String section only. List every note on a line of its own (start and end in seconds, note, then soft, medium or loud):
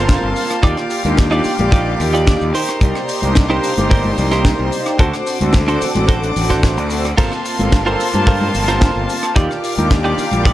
0.00 0.61 A#3 medium
0.00 2.50 F5 medium
0.00 0.61 A5 medium
0.00 0.61 C6 loud
0.63 2.53 G4 medium
0.63 2.52 D6 medium
2.55 7.14 C5 medium
2.55 4.98 A#5 medium
2.55 4.98 C6 loud
5.00 7.16 F#5 medium
5.00 7.16 D6 loud
7.18 9.34 A#3 medium
7.18 9.34 F5 medium
7.18 9.34 A5 medium
7.18 9.34 C6 loud
9.36 10.53 G4 medium
9.36 10.53 F5 medium
9.36 10.53 D6 loud